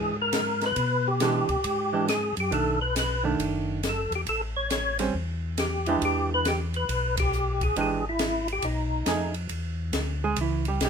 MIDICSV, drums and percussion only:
0, 0, Header, 1, 2, 480
1, 0, Start_track
1, 0, Tempo, 436681
1, 844, Time_signature, 4, 2, 24, 8
1, 11977, End_track
2, 0, Start_track
2, 0, Title_t, "Drums"
2, 358, Note_on_c, 9, 44, 54
2, 358, Note_on_c, 9, 51, 68
2, 363, Note_on_c, 9, 38, 66
2, 468, Note_off_c, 9, 44, 0
2, 468, Note_off_c, 9, 51, 0
2, 473, Note_off_c, 9, 38, 0
2, 674, Note_on_c, 9, 51, 45
2, 680, Note_on_c, 9, 38, 42
2, 784, Note_off_c, 9, 51, 0
2, 789, Note_off_c, 9, 38, 0
2, 835, Note_on_c, 9, 51, 61
2, 842, Note_on_c, 9, 36, 33
2, 945, Note_off_c, 9, 51, 0
2, 952, Note_off_c, 9, 36, 0
2, 1321, Note_on_c, 9, 44, 51
2, 1321, Note_on_c, 9, 51, 69
2, 1326, Note_on_c, 9, 38, 62
2, 1431, Note_off_c, 9, 44, 0
2, 1431, Note_off_c, 9, 51, 0
2, 1436, Note_off_c, 9, 38, 0
2, 1634, Note_on_c, 9, 51, 44
2, 1639, Note_on_c, 9, 36, 50
2, 1744, Note_off_c, 9, 51, 0
2, 1749, Note_off_c, 9, 36, 0
2, 1802, Note_on_c, 9, 51, 68
2, 1809, Note_on_c, 9, 36, 33
2, 1912, Note_off_c, 9, 51, 0
2, 1919, Note_off_c, 9, 36, 0
2, 2290, Note_on_c, 9, 44, 55
2, 2290, Note_on_c, 9, 51, 60
2, 2295, Note_on_c, 9, 38, 64
2, 2400, Note_off_c, 9, 44, 0
2, 2400, Note_off_c, 9, 51, 0
2, 2405, Note_off_c, 9, 38, 0
2, 2601, Note_on_c, 9, 51, 51
2, 2711, Note_off_c, 9, 51, 0
2, 2770, Note_on_c, 9, 51, 54
2, 2773, Note_on_c, 9, 36, 33
2, 2880, Note_off_c, 9, 51, 0
2, 2882, Note_off_c, 9, 36, 0
2, 3251, Note_on_c, 9, 44, 59
2, 3251, Note_on_c, 9, 51, 71
2, 3257, Note_on_c, 9, 38, 60
2, 3361, Note_off_c, 9, 44, 0
2, 3361, Note_off_c, 9, 51, 0
2, 3367, Note_off_c, 9, 38, 0
2, 3733, Note_on_c, 9, 51, 61
2, 3736, Note_on_c, 9, 36, 33
2, 3843, Note_off_c, 9, 51, 0
2, 3846, Note_off_c, 9, 36, 0
2, 4212, Note_on_c, 9, 44, 52
2, 4212, Note_on_c, 9, 51, 60
2, 4218, Note_on_c, 9, 38, 60
2, 4322, Note_off_c, 9, 44, 0
2, 4322, Note_off_c, 9, 51, 0
2, 4328, Note_off_c, 9, 38, 0
2, 4528, Note_on_c, 9, 51, 45
2, 4638, Note_off_c, 9, 51, 0
2, 4688, Note_on_c, 9, 51, 60
2, 4694, Note_on_c, 9, 36, 34
2, 4798, Note_off_c, 9, 51, 0
2, 4804, Note_off_c, 9, 36, 0
2, 5170, Note_on_c, 9, 44, 62
2, 5170, Note_on_c, 9, 51, 68
2, 5175, Note_on_c, 9, 38, 60
2, 5280, Note_off_c, 9, 44, 0
2, 5280, Note_off_c, 9, 51, 0
2, 5285, Note_off_c, 9, 38, 0
2, 5483, Note_on_c, 9, 51, 63
2, 5488, Note_on_c, 9, 38, 47
2, 5593, Note_off_c, 9, 51, 0
2, 5598, Note_off_c, 9, 38, 0
2, 5654, Note_on_c, 9, 36, 35
2, 5764, Note_off_c, 9, 36, 0
2, 6128, Note_on_c, 9, 44, 51
2, 6128, Note_on_c, 9, 51, 63
2, 6133, Note_on_c, 9, 38, 64
2, 6238, Note_off_c, 9, 44, 0
2, 6238, Note_off_c, 9, 51, 0
2, 6243, Note_off_c, 9, 38, 0
2, 6443, Note_on_c, 9, 51, 47
2, 6553, Note_off_c, 9, 51, 0
2, 6613, Note_on_c, 9, 51, 56
2, 6615, Note_on_c, 9, 36, 34
2, 6723, Note_off_c, 9, 51, 0
2, 6725, Note_off_c, 9, 36, 0
2, 7091, Note_on_c, 9, 44, 50
2, 7091, Note_on_c, 9, 51, 62
2, 7096, Note_on_c, 9, 38, 60
2, 7201, Note_off_c, 9, 44, 0
2, 7201, Note_off_c, 9, 51, 0
2, 7206, Note_off_c, 9, 38, 0
2, 7407, Note_on_c, 9, 51, 42
2, 7517, Note_off_c, 9, 51, 0
2, 7573, Note_on_c, 9, 51, 63
2, 7577, Note_on_c, 9, 36, 34
2, 7683, Note_off_c, 9, 51, 0
2, 7687, Note_off_c, 9, 36, 0
2, 7884, Note_on_c, 9, 51, 71
2, 7889, Note_on_c, 9, 36, 78
2, 7994, Note_off_c, 9, 51, 0
2, 7999, Note_off_c, 9, 36, 0
2, 8055, Note_on_c, 9, 44, 54
2, 8165, Note_off_c, 9, 44, 0
2, 8366, Note_on_c, 9, 51, 46
2, 8367, Note_on_c, 9, 36, 71
2, 8476, Note_off_c, 9, 51, 0
2, 8477, Note_off_c, 9, 36, 0
2, 8533, Note_on_c, 9, 51, 55
2, 8534, Note_on_c, 9, 36, 34
2, 8643, Note_off_c, 9, 51, 0
2, 8644, Note_off_c, 9, 36, 0
2, 9003, Note_on_c, 9, 44, 52
2, 9003, Note_on_c, 9, 51, 66
2, 9008, Note_on_c, 9, 38, 69
2, 9113, Note_off_c, 9, 44, 0
2, 9113, Note_off_c, 9, 51, 0
2, 9118, Note_off_c, 9, 38, 0
2, 9321, Note_on_c, 9, 51, 46
2, 9431, Note_off_c, 9, 51, 0
2, 9478, Note_on_c, 9, 51, 61
2, 9488, Note_on_c, 9, 36, 37
2, 9587, Note_off_c, 9, 51, 0
2, 9598, Note_off_c, 9, 36, 0
2, 9959, Note_on_c, 9, 44, 63
2, 9959, Note_on_c, 9, 51, 68
2, 9965, Note_on_c, 9, 38, 66
2, 10069, Note_off_c, 9, 44, 0
2, 10069, Note_off_c, 9, 51, 0
2, 10075, Note_off_c, 9, 38, 0
2, 10269, Note_on_c, 9, 51, 43
2, 10379, Note_off_c, 9, 51, 0
2, 10433, Note_on_c, 9, 51, 57
2, 10442, Note_on_c, 9, 36, 23
2, 10543, Note_off_c, 9, 51, 0
2, 10552, Note_off_c, 9, 36, 0
2, 10913, Note_on_c, 9, 44, 57
2, 10913, Note_on_c, 9, 51, 65
2, 10919, Note_on_c, 9, 38, 66
2, 10921, Note_on_c, 9, 36, 23
2, 11023, Note_off_c, 9, 44, 0
2, 11023, Note_off_c, 9, 51, 0
2, 11029, Note_off_c, 9, 38, 0
2, 11031, Note_off_c, 9, 36, 0
2, 11391, Note_on_c, 9, 51, 65
2, 11398, Note_on_c, 9, 36, 27
2, 11501, Note_off_c, 9, 51, 0
2, 11508, Note_off_c, 9, 36, 0
2, 11707, Note_on_c, 9, 51, 43
2, 11817, Note_off_c, 9, 51, 0
2, 11877, Note_on_c, 9, 44, 58
2, 11877, Note_on_c, 9, 51, 68
2, 11880, Note_on_c, 9, 36, 26
2, 11883, Note_on_c, 9, 38, 69
2, 11977, Note_off_c, 9, 36, 0
2, 11977, Note_off_c, 9, 38, 0
2, 11977, Note_off_c, 9, 44, 0
2, 11977, Note_off_c, 9, 51, 0
2, 11977, End_track
0, 0, End_of_file